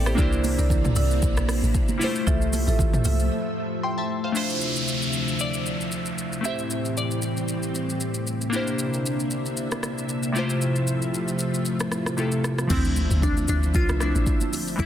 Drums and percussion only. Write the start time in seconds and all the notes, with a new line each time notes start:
0.06 cross-stick, shaker
0.18 kick, low conga, shaker
0.32 shaker
0.44 open hi-hat, high conga, shaker
0.59 high conga, shaker
0.70 kick, low conga, shaker
0.84 mid tom, high conga, shaker
0.96 open hi-hat, high conga, shaker
1.11 shaker
1.22 kick, shaker
1.37 cross-stick, shaker
1.49 cross-stick, open hi-hat, shaker
1.63 high conga, shaker
1.74 kick, shaker
1.88 high conga, shaker
2.01 open hi-hat, high conga, shaker
2.15 shaker
2.27 kick, low conga, shaker
2.41 shaker
2.53 open hi-hat, high conga, shaker
2.68 high conga, shaker
2.79 kick, low conga, shaker
2.93 mid tom, high conga, shaker
3.05 open hi-hat, high conga, shaker
3.19 shaker
4.35 shaker
4.50 shaker
4.61 shaker
4.76 shaker
4.88 shaker
5.02 shaker
5.13 shaker
5.28 shaker
5.39 shaker
5.54 shaker
5.66 shaker
5.81 shaker
5.92 shaker
6.06 shaker
6.18 shaker
6.33 shaker
6.44 shaker
6.59 shaker
6.70 shaker
6.85 shaker
6.97 shaker
7.11 shaker
7.22 shaker
7.37 shaker
7.48 shaker
7.63 shaker
7.75 shaker
7.90 shaker
8.00 shaker
8.14 shaker
8.27 shaker
8.41 shaker
8.53 shaker
8.67 shaker
8.79 shaker
8.94 shaker
9.06 shaker
9.20 shaker
9.31 shaker
9.46 shaker
9.57 shaker
9.71 cross-stick, shaker
9.83 cross-stick, shaker
9.98 shaker
10.09 shaker
10.23 shaker
10.36 shaker
10.50 shaker
10.61 shaker
10.76 shaker
10.87 shaker
11.02 shaker
11.14 shaker
11.28 shaker
11.39 shaker
11.54 shaker
11.65 shaker
11.80 cross-stick, shaker
11.92 cross-stick, shaker
12.06 cross-stick, shaker
12.18 shaker
12.32 shaker
12.44 cross-stick, shaker
12.58 cross-stick, shaker
12.70 kick, crash, low conga, shaker
12.85 shaker
12.96 high conga, shaker
13.11 high conga, shaker
13.22 kick, low conga, shaker
13.37 high conga, shaker
13.48 high conga, shaker
13.63 shaker
13.74 kick, shaker
13.89 cross-stick, shaker
14.00 cross-stick, shaker
14.15 high conga, shaker
14.26 kick, shaker
14.40 high conga, shaker
14.53 open hi-hat, high conga, shaker
14.67 shaker
14.79 kick, low conga, shaker